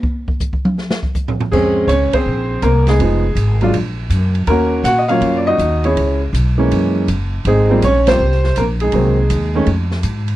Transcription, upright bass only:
X:1
M:4/4
L:1/8
Q:"Swing" 1/4=162
K:Bbm
V:1 name="Upright bass" clef=bass
z8 | F,,2 D,, z B,,,2 C,,2 | F,,,2 A,,,2 B,,,2 G,,2 | E,,2 B,,2 G,,2 E,,2 |
D,,2 _C,,2 G,,2 G,,,2 | A,,,2 B,,,2 C,,2 B,,,2 | C,,2 E,,2 F,,2 A,,2 |]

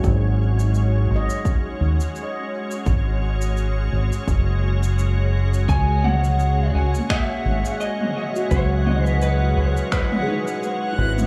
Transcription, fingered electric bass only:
X:1
M:4/4
L:1/8
Q:"Swing 16ths" 1/4=85
K:C#dor
V:1 name="Fingered electric bass" clef=bass
G,,,3 G,,, z D,, z2 | G,,,3 G,,, F,,,4 | C,,3 C,, z G,,, z2 | C,,3 C,, z3 G,,, |]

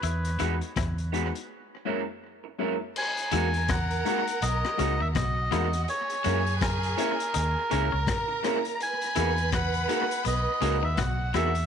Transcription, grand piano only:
X:1
M:4/4
L:1/16
Q:"Swing 16ths" 1/4=82
K:Elyd
V:1 name="Grand piano"
z2 [G,B,DF] z3 [G,B,DF] z3 [F,,G,A,CE] z3 [F,,G,A,CE] [CE] | z2 [G,A,DF] z3 [G,A,DF] z3 [G,A,DF] z3 [G,A,DF] [DF] | z2 [A,CEG] z3 [A,CEG] z3 [A,CEG] z3 [A,CEG] [EG] | z2 [A,DFG] z3 [A,DFG] z3 [A,DFG] z3 [A,DFG] [FG] |]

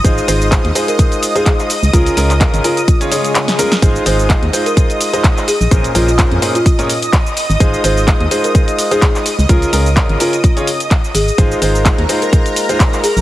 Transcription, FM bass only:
X:1
M:4/4
L:1/16
Q:"Swing 16ths" 1/4=127
K:Ab
V:1 name="FM bass" clef=bass
A,,, z A,,,2 z E,, z8 z D,, | D,, z D,,2 z A,,, z8 z2 | A,,, z A,,,2 z E,, z8 z B,,, | B,,, z B,,,2 z F,, z8 z A,,, |
A,,, z A,,,2 z E,, z8 z D,, | D,, z D,,2 z A,,, z8 A,,, z | A,,, z A,,,2 z E,, z8 z B,,, |]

